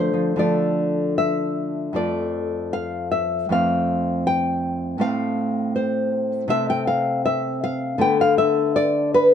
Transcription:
0.00 0.35 D3 medium
0.00 0.12 F3 soft
0.00 0.37 A3 soft
0.00 0.38 C5 medium
0.14 0.36 F3 soft
0.36 1.90 D3 medium
0.36 1.91 F3 soft
0.36 1.91 A3 soft
0.36 1.16 D5 medium
1.18 1.92 E5 medium
1.93 3.45 F2 medium
1.93 3.46 F3 soft
1.93 3.46 A3 soft
1.93 2.70 D5 medium
2.73 3.11 F5 medium
3.12 3.49 E5 medium
3.49 4.96 F2 medium
3.49 4.96 A3 soft
3.49 4.97 C4 soft
3.49 4.24 F5 medium
4.27 4.98 G5 medium
4.98 6.45 A2 medium
4.98 6.45 A3 soft
4.98 6.46 C4 soft
4.98 5.72 F5 loud
5.76 6.11 C5 medium
6.48 7.95 C3 medium
6.48 7.96 A3 medium
6.48 7.96 C4 medium
6.48 6.69 E5 loud
6.70 6.87 G5 loud
6.87 7.23 F5 medium
7.26 7.61 E5 loud
7.64 8.00 F5 loud
7.98 9.34 D3 medium
7.98 9.34 A3 medium
7.98 9.34 B3 medium
7.98 8.20 G5 loud
8.21 8.38 F5 loud
8.38 8.74 E5 loud
8.76 9.12 D5 loud
9.14 9.34 B4 loud

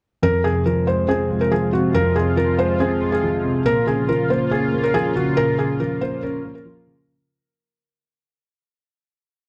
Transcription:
0.22 1.30 F2 medium
0.22 3.62 C3 medium
0.22 7.05 F3 medium
0.22 3.62 G#3 medium
0.22 3.62 F4 medium
0.22 0.42 A#4 loud
0.44 1.51 C3 medium
0.44 0.64 G#4 medium
0.66 1.50 F3 medium
0.66 0.85 A#4 medium
0.87 1.29 G#3 medium
0.87 1.06 C5 medium
1.08 2.15 C4 loud
1.08 1.39 G#4 medium
1.30 2.37 G#3 medium
1.41 1.50 A#4 medium
1.52 2.35 F3 medium
1.52 1.71 G#4 medium
1.73 2.15 C3 medium
1.73 1.92 F#4 medium
1.94 3.01 F2 medium
1.94 2.14 A#4 loud
2.16 3.23 C3 medium
2.16 2.35 G#4 medium
2.36 3.22 F3 medium
2.36 2.57 A#4 medium
2.59 3.00 G#3 medium
2.59 2.78 C5 medium
2.80 3.66 C4 loud
2.80 3.10 G#4 medium
3.02 3.66 G#3 medium
3.12 3.63 G#4 medium
3.23 3.66 F3 medium
3.44 3.66 C3 medium
3.65 4.72 A#2 medium
3.65 7.05 C#3 medium
3.65 7.05 A#3 medium
3.65 7.05 F4 medium
3.65 3.85 A#4 loud
3.87 4.94 C#3 medium
3.87 4.07 G#4 medium
4.09 4.92 F3 medium
4.09 4.28 A#4 medium
4.30 4.71 A#3 medium
4.30 4.49 C5 medium
4.51 5.58 C#4 medium
4.51 4.82 G#4 medium
4.73 5.80 A#3 medium
4.84 4.93 A#4 medium
4.94 5.78 F3 medium
4.94 5.14 G#4 medium
5.16 5.57 C#3 medium
5.16 5.35 F#4 medium
5.37 6.44 A#2 medium
5.37 5.56 A#4 loud
5.58 6.66 C#3 medium
5.58 5.78 G#4 medium
5.80 6.64 F3 medium
5.80 5.99 A#4 medium
6.01 6.43 A#3 medium
6.01 6.21 C5 medium
6.23 7.08 C#4 loud
6.23 6.53 A#4 medium
6.45 7.09 A#3 medium
6.55 7.05 A#4 medium
6.65 7.08 F3 medium
6.87 7.08 C#3 medium

